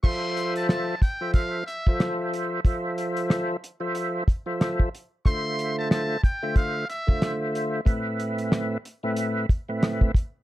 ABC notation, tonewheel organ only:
X:1
M:4/4
L:1/16
Q:"Swing 16ths" 1/4=92
K:Flyd
V:1 name="Tonewheel organ"
[F,FAce]6 z [F,FAce]3 z [F,FAce]4- [F,FAce] | [F,FAce]6 z [F,FAce]3 z [F,FAce]3 z2 | [D,A,Fce]6 z [D,A,Fce]3 z [D,A,Fce]4- [D,A,Fce] | [A,,A,CBe]6 z [A,,A,CBe]3 z [A,,A,CBe]3 z2 |]